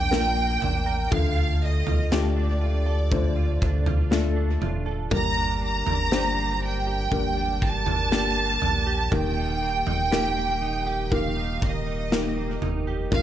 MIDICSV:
0, 0, Header, 1, 6, 480
1, 0, Start_track
1, 0, Tempo, 1000000
1, 537, Time_signature, 4, 2, 24, 8
1, 6347, End_track
2, 0, Start_track
2, 0, Title_t, "Violin section"
2, 0, Program_c, 0, 48
2, 0, Note_on_c, 0, 79, 117
2, 542, Note_off_c, 0, 79, 0
2, 545, Note_on_c, 0, 77, 97
2, 781, Note_off_c, 0, 77, 0
2, 784, Note_on_c, 0, 75, 90
2, 1020, Note_off_c, 0, 75, 0
2, 1025, Note_on_c, 0, 74, 82
2, 1981, Note_off_c, 0, 74, 0
2, 2464, Note_on_c, 0, 82, 114
2, 2684, Note_off_c, 0, 82, 0
2, 2707, Note_on_c, 0, 82, 108
2, 3162, Note_off_c, 0, 82, 0
2, 3190, Note_on_c, 0, 79, 103
2, 3664, Note_off_c, 0, 79, 0
2, 3671, Note_on_c, 0, 81, 103
2, 4384, Note_off_c, 0, 81, 0
2, 4390, Note_on_c, 0, 79, 105
2, 5343, Note_off_c, 0, 79, 0
2, 5347, Note_on_c, 0, 77, 85
2, 5582, Note_off_c, 0, 77, 0
2, 5587, Note_on_c, 0, 75, 76
2, 6062, Note_off_c, 0, 75, 0
2, 6304, Note_on_c, 0, 77, 97
2, 6347, Note_off_c, 0, 77, 0
2, 6347, End_track
3, 0, Start_track
3, 0, Title_t, "Felt piano"
3, 0, Program_c, 1, 0
3, 0, Control_c, 1, 64, 127
3, 0, Note_on_c, 1, 58, 74
3, 0, Note_on_c, 1, 62, 65
3, 0, Note_on_c, 1, 65, 64
3, 0, Note_on_c, 1, 70, 79
3, 54, Note_off_c, 1, 58, 0
3, 54, Note_on_c, 1, 58, 75
3, 55, Note_off_c, 1, 62, 0
3, 55, Note_off_c, 1, 65, 0
3, 55, Note_on_c, 1, 62, 65
3, 55, Note_on_c, 1, 65, 68
3, 57, Note_off_c, 1, 70, 0
3, 57, Note_on_c, 1, 70, 81
3, 511, Note_off_c, 1, 58, 0
3, 512, Note_off_c, 1, 62, 0
3, 512, Note_off_c, 1, 65, 0
3, 513, Note_off_c, 1, 70, 0
3, 534, Note_on_c, 1, 57, 69
3, 536, Note_on_c, 1, 50, 61
3, 536, Note_on_c, 1, 65, 64
3, 536, Note_on_c, 1, 69, 76
3, 543, Control_c, 1, 64, 0
3, 620, Control_c, 1, 64, 127
3, 991, Note_off_c, 1, 57, 0
3, 992, Note_off_c, 1, 65, 0
3, 992, Note_off_c, 1, 69, 0
3, 1017, Note_on_c, 1, 57, 74
3, 1017, Note_on_c, 1, 62, 62
3, 1018, Note_on_c, 1, 65, 65
3, 1019, Note_on_c, 1, 67, 82
3, 1237, Note_off_c, 1, 50, 0
3, 1473, Note_off_c, 1, 57, 0
3, 1473, Note_off_c, 1, 62, 0
3, 1473, Note_off_c, 1, 65, 0
3, 1474, Note_off_c, 1, 67, 0
3, 1494, Note_on_c, 1, 57, 72
3, 1494, Note_on_c, 1, 62, 65
3, 1495, Note_on_c, 1, 65, 64
3, 1497, Note_on_c, 1, 72, 80
3, 1951, Note_off_c, 1, 62, 0
3, 1952, Note_off_c, 1, 57, 0
3, 1952, Note_off_c, 1, 65, 0
3, 1953, Note_off_c, 1, 72, 0
3, 1973, Note_on_c, 1, 57, 82
3, 1974, Note_on_c, 1, 62, 81
3, 1974, Note_on_c, 1, 65, 84
3, 1975, Note_on_c, 1, 69, 98
3, 2431, Note_off_c, 1, 57, 0
3, 2431, Note_off_c, 1, 62, 0
3, 2431, Note_off_c, 1, 65, 0
3, 2432, Note_off_c, 1, 69, 0
3, 2454, Note_on_c, 1, 58, 71
3, 2455, Note_on_c, 1, 62, 64
3, 2455, Note_on_c, 1, 67, 66
3, 2456, Note_on_c, 1, 43, 61
3, 2456, Note_on_c, 1, 70, 81
3, 2463, Control_c, 1, 64, 0
3, 2538, Control_c, 1, 64, 127
3, 2911, Note_off_c, 1, 58, 0
3, 2912, Note_off_c, 1, 62, 0
3, 2912, Note_off_c, 1, 67, 0
3, 2912, Note_off_c, 1, 70, 0
3, 2936, Note_on_c, 1, 58, 71
3, 2937, Note_on_c, 1, 62, 65
3, 2938, Note_on_c, 1, 67, 68
3, 2938, Note_on_c, 1, 72, 82
3, 3157, Note_off_c, 1, 43, 0
3, 3392, Note_off_c, 1, 58, 0
3, 3393, Note_off_c, 1, 62, 0
3, 3393, Note_off_c, 1, 67, 0
3, 3393, Note_off_c, 1, 72, 0
3, 3415, Note_on_c, 1, 58, 68
3, 3415, Note_on_c, 1, 62, 67
3, 3417, Note_on_c, 1, 70, 81
3, 3418, Note_on_c, 1, 67, 63
3, 3872, Note_off_c, 1, 58, 0
3, 3872, Note_off_c, 1, 62, 0
3, 3873, Note_off_c, 1, 67, 0
3, 3873, Note_off_c, 1, 70, 0
3, 3895, Note_on_c, 1, 58, 70
3, 3896, Note_on_c, 1, 62, 62
3, 3897, Note_on_c, 1, 67, 65
3, 3899, Note_on_c, 1, 70, 79
3, 4352, Note_off_c, 1, 58, 0
3, 4353, Note_off_c, 1, 62, 0
3, 4353, Note_off_c, 1, 67, 0
3, 4354, Note_off_c, 1, 70, 0
3, 4376, Note_on_c, 1, 58, 67
3, 4377, Note_on_c, 1, 51, 62
3, 4377, Note_on_c, 1, 63, 59
3, 4378, Note_on_c, 1, 67, 62
3, 4378, Note_on_c, 1, 70, 73
3, 4384, Control_c, 1, 64, 0
3, 4460, Control_c, 1, 64, 127
3, 4832, Note_off_c, 1, 58, 0
3, 4833, Note_off_c, 1, 63, 0
3, 4833, Note_off_c, 1, 67, 0
3, 4833, Note_off_c, 1, 70, 0
3, 4855, Note_on_c, 1, 58, 73
3, 4858, Note_on_c, 1, 63, 65
3, 4858, Note_on_c, 1, 67, 66
3, 4859, Note_on_c, 1, 70, 79
3, 5078, Note_off_c, 1, 51, 0
3, 5312, Note_off_c, 1, 58, 0
3, 5313, Note_off_c, 1, 63, 0
3, 5313, Note_off_c, 1, 67, 0
3, 5314, Note_off_c, 1, 70, 0
3, 5335, Note_on_c, 1, 58, 67
3, 5337, Note_on_c, 1, 63, 68
3, 5337, Note_on_c, 1, 67, 67
3, 5337, Note_on_c, 1, 70, 77
3, 5792, Note_off_c, 1, 58, 0
3, 5793, Note_off_c, 1, 63, 0
3, 5793, Note_off_c, 1, 67, 0
3, 5793, Note_off_c, 1, 70, 0
3, 5817, Note_on_c, 1, 58, 72
3, 5818, Note_on_c, 1, 63, 64
3, 5819, Note_on_c, 1, 67, 60
3, 5821, Note_on_c, 1, 70, 80
3, 6273, Note_off_c, 1, 58, 0
3, 6273, Note_off_c, 1, 63, 0
3, 6274, Note_off_c, 1, 67, 0
3, 6275, Note_off_c, 1, 70, 0
3, 6295, Note_on_c, 1, 58, 69
3, 6296, Note_on_c, 1, 62, 64
3, 6297, Note_on_c, 1, 46, 59
3, 6298, Note_on_c, 1, 65, 59
3, 6298, Note_on_c, 1, 70, 78
3, 6302, Control_c, 1, 64, 0
3, 6347, Note_off_c, 1, 46, 0
3, 6347, Note_off_c, 1, 58, 0
3, 6347, Note_off_c, 1, 62, 0
3, 6347, Note_off_c, 1, 65, 0
3, 6347, Note_off_c, 1, 70, 0
3, 6347, End_track
4, 0, Start_track
4, 0, Title_t, "Clean electric guitar"
4, 0, Program_c, 2, 27
4, 0, Note_on_c, 2, 58, 54
4, 0, Note_on_c, 2, 62, 58
4, 0, Note_on_c, 2, 70, 66
4, 50, Note_off_c, 2, 70, 0
4, 56, Note_on_c, 2, 70, 64
4, 169, Note_off_c, 2, 58, 0
4, 175, Note_on_c, 2, 58, 57
4, 292, Note_off_c, 2, 62, 0
4, 294, Note_on_c, 2, 62, 57
4, 408, Note_off_c, 2, 70, 0
4, 414, Note_on_c, 2, 70, 61
4, 535, Note_on_c, 2, 50, 75
4, 583, Note_off_c, 2, 70, 0
4, 584, Note_off_c, 2, 58, 0
4, 655, Note_off_c, 2, 62, 0
4, 657, Note_on_c, 2, 65, 60
4, 889, Note_off_c, 2, 65, 0
4, 895, Note_on_c, 2, 65, 60
4, 1015, Note_on_c, 2, 69, 66
4, 1134, Note_on_c, 2, 62, 60
4, 1248, Note_off_c, 2, 65, 0
4, 1254, Note_on_c, 2, 65, 61
4, 1368, Note_off_c, 2, 69, 0
4, 1374, Note_on_c, 2, 69, 67
4, 1493, Note_off_c, 2, 50, 0
4, 1495, Note_on_c, 2, 50, 75
4, 1608, Note_off_c, 2, 65, 0
4, 1614, Note_on_c, 2, 65, 62
4, 1732, Note_off_c, 2, 62, 0
4, 1734, Note_on_c, 2, 62, 59
4, 1848, Note_off_c, 2, 65, 0
4, 1853, Note_on_c, 2, 65, 63
4, 1968, Note_off_c, 2, 69, 0
4, 1974, Note_on_c, 2, 69, 63
4, 2092, Note_off_c, 2, 62, 0
4, 2093, Note_on_c, 2, 62, 59
4, 2208, Note_off_c, 2, 65, 0
4, 2213, Note_on_c, 2, 65, 60
4, 2327, Note_off_c, 2, 69, 0
4, 2333, Note_on_c, 2, 69, 59
4, 2454, Note_on_c, 2, 43, 86
4, 2503, Note_off_c, 2, 65, 0
4, 2503, Note_off_c, 2, 69, 0
4, 2575, Note_off_c, 2, 62, 0
4, 2575, Note_on_c, 2, 62, 61
4, 2696, Note_on_c, 2, 58, 60
4, 2809, Note_off_c, 2, 62, 0
4, 2815, Note_on_c, 2, 62, 65
4, 2935, Note_on_c, 2, 67, 68
4, 3054, Note_off_c, 2, 58, 0
4, 3056, Note_on_c, 2, 58, 59
4, 3170, Note_off_c, 2, 62, 0
4, 3175, Note_off_c, 2, 50, 0
4, 3176, Note_on_c, 2, 62, 64
4, 3295, Note_off_c, 2, 67, 0
4, 3297, Note_on_c, 2, 67, 69
4, 3411, Note_off_c, 2, 43, 0
4, 3417, Note_on_c, 2, 43, 77
4, 3532, Note_off_c, 2, 62, 0
4, 3538, Note_on_c, 2, 62, 61
4, 3656, Note_off_c, 2, 58, 0
4, 3658, Note_on_c, 2, 58, 56
4, 3772, Note_off_c, 2, 62, 0
4, 3778, Note_on_c, 2, 62, 63
4, 3896, Note_off_c, 2, 67, 0
4, 3898, Note_on_c, 2, 67, 64
4, 4016, Note_off_c, 2, 58, 0
4, 4018, Note_on_c, 2, 58, 58
4, 4131, Note_off_c, 2, 62, 0
4, 4136, Note_on_c, 2, 62, 58
4, 4254, Note_off_c, 2, 67, 0
4, 4256, Note_on_c, 2, 67, 62
4, 4376, Note_on_c, 2, 51, 78
4, 4424, Note_off_c, 2, 62, 0
4, 4425, Note_off_c, 2, 43, 0
4, 4496, Note_on_c, 2, 63, 58
4, 4616, Note_off_c, 2, 58, 0
4, 4618, Note_on_c, 2, 58, 55
4, 4732, Note_off_c, 2, 63, 0
4, 4738, Note_on_c, 2, 63, 60
4, 4855, Note_off_c, 2, 67, 0
4, 4857, Note_on_c, 2, 67, 63
4, 4974, Note_off_c, 2, 58, 0
4, 4976, Note_on_c, 2, 58, 57
4, 5090, Note_off_c, 2, 63, 0
4, 5096, Note_on_c, 2, 63, 59
4, 5210, Note_off_c, 2, 67, 0
4, 5216, Note_on_c, 2, 67, 62
4, 5330, Note_off_c, 2, 51, 0
4, 5335, Note_on_c, 2, 51, 69
4, 5450, Note_off_c, 2, 63, 0
4, 5456, Note_on_c, 2, 63, 55
4, 5572, Note_off_c, 2, 58, 0
4, 5574, Note_on_c, 2, 58, 54
4, 5690, Note_off_c, 2, 63, 0
4, 5695, Note_on_c, 2, 63, 57
4, 5812, Note_off_c, 2, 67, 0
4, 5818, Note_on_c, 2, 67, 64
4, 5936, Note_off_c, 2, 58, 0
4, 5938, Note_on_c, 2, 58, 54
4, 6052, Note_off_c, 2, 63, 0
4, 6058, Note_on_c, 2, 63, 57
4, 6174, Note_off_c, 2, 67, 0
4, 6179, Note_on_c, 2, 67, 55
4, 6299, Note_on_c, 2, 46, 77
4, 6344, Note_off_c, 2, 51, 0
4, 6345, Note_off_c, 2, 63, 0
4, 6346, Note_off_c, 2, 67, 0
4, 6347, Note_off_c, 2, 46, 0
4, 6347, Note_off_c, 2, 58, 0
4, 6347, End_track
5, 0, Start_track
5, 0, Title_t, "Sub bass"
5, 0, Program_c, 3, 38
5, 0, Note_on_c, 3, 34, 99
5, 278, Note_off_c, 3, 34, 0
5, 298, Note_on_c, 3, 33, 85
5, 521, Note_off_c, 3, 33, 0
5, 537, Note_on_c, 3, 38, 109
5, 878, Note_off_c, 3, 38, 0
5, 898, Note_on_c, 3, 38, 106
5, 1009, Note_off_c, 3, 38, 0
5, 1017, Note_on_c, 3, 38, 97
5, 1718, Note_off_c, 3, 38, 0
5, 1736, Note_on_c, 3, 38, 100
5, 2197, Note_off_c, 3, 38, 0
5, 2213, Note_on_c, 3, 26, 80
5, 2438, Note_off_c, 3, 26, 0
5, 2455, Note_on_c, 3, 31, 102
5, 2796, Note_off_c, 3, 31, 0
5, 2818, Note_on_c, 3, 31, 101
5, 2929, Note_off_c, 3, 31, 0
5, 2935, Note_on_c, 3, 31, 105
5, 3397, Note_off_c, 3, 31, 0
5, 3416, Note_on_c, 3, 31, 98
5, 4117, Note_off_c, 3, 31, 0
5, 4139, Note_on_c, 3, 34, 87
5, 4361, Note_off_c, 3, 34, 0
5, 4376, Note_on_c, 3, 27, 103
5, 4717, Note_off_c, 3, 27, 0
5, 4737, Note_on_c, 3, 27, 91
5, 4848, Note_off_c, 3, 27, 0
5, 4858, Note_on_c, 3, 27, 100
5, 5558, Note_off_c, 3, 27, 0
5, 5578, Note_on_c, 3, 27, 100
5, 6038, Note_off_c, 3, 27, 0
5, 6056, Note_on_c, 3, 29, 86
5, 6279, Note_off_c, 3, 29, 0
5, 6297, Note_on_c, 3, 34, 99
5, 6347, Note_off_c, 3, 34, 0
5, 6347, End_track
6, 0, Start_track
6, 0, Title_t, "Drums"
6, 61, Note_on_c, 9, 38, 107
6, 109, Note_off_c, 9, 38, 0
6, 298, Note_on_c, 9, 43, 61
6, 346, Note_off_c, 9, 43, 0
6, 537, Note_on_c, 9, 36, 108
6, 538, Note_on_c, 9, 43, 106
6, 585, Note_off_c, 9, 36, 0
6, 586, Note_off_c, 9, 43, 0
6, 896, Note_on_c, 9, 43, 60
6, 944, Note_off_c, 9, 43, 0
6, 1017, Note_on_c, 9, 38, 104
6, 1065, Note_off_c, 9, 38, 0
6, 1496, Note_on_c, 9, 36, 91
6, 1496, Note_on_c, 9, 43, 63
6, 1544, Note_off_c, 9, 36, 0
6, 1544, Note_off_c, 9, 43, 0
6, 1737, Note_on_c, 9, 36, 91
6, 1785, Note_off_c, 9, 36, 0
6, 1855, Note_on_c, 9, 43, 68
6, 1903, Note_off_c, 9, 43, 0
6, 1977, Note_on_c, 9, 38, 107
6, 2025, Note_off_c, 9, 38, 0
6, 2216, Note_on_c, 9, 43, 62
6, 2264, Note_off_c, 9, 43, 0
6, 2454, Note_on_c, 9, 43, 111
6, 2455, Note_on_c, 9, 36, 111
6, 2502, Note_off_c, 9, 43, 0
6, 2503, Note_off_c, 9, 36, 0
6, 2815, Note_on_c, 9, 43, 65
6, 2863, Note_off_c, 9, 43, 0
6, 2938, Note_on_c, 9, 38, 110
6, 2986, Note_off_c, 9, 38, 0
6, 3416, Note_on_c, 9, 36, 90
6, 3416, Note_on_c, 9, 43, 64
6, 3464, Note_off_c, 9, 36, 0
6, 3464, Note_off_c, 9, 43, 0
6, 3658, Note_on_c, 9, 36, 88
6, 3706, Note_off_c, 9, 36, 0
6, 3775, Note_on_c, 9, 43, 68
6, 3823, Note_off_c, 9, 43, 0
6, 3899, Note_on_c, 9, 38, 104
6, 3947, Note_off_c, 9, 38, 0
6, 4137, Note_on_c, 9, 43, 59
6, 4185, Note_off_c, 9, 43, 0
6, 4377, Note_on_c, 9, 36, 115
6, 4377, Note_on_c, 9, 43, 106
6, 4425, Note_off_c, 9, 36, 0
6, 4425, Note_off_c, 9, 43, 0
6, 4736, Note_on_c, 9, 43, 61
6, 4784, Note_off_c, 9, 43, 0
6, 4860, Note_on_c, 9, 38, 100
6, 4908, Note_off_c, 9, 38, 0
6, 5336, Note_on_c, 9, 36, 89
6, 5337, Note_on_c, 9, 43, 62
6, 5384, Note_off_c, 9, 36, 0
6, 5385, Note_off_c, 9, 43, 0
6, 5578, Note_on_c, 9, 36, 87
6, 5626, Note_off_c, 9, 36, 0
6, 5819, Note_on_c, 9, 38, 108
6, 5867, Note_off_c, 9, 38, 0
6, 6057, Note_on_c, 9, 43, 59
6, 6105, Note_off_c, 9, 43, 0
6, 6297, Note_on_c, 9, 36, 119
6, 6297, Note_on_c, 9, 43, 109
6, 6345, Note_off_c, 9, 36, 0
6, 6345, Note_off_c, 9, 43, 0
6, 6347, End_track
0, 0, End_of_file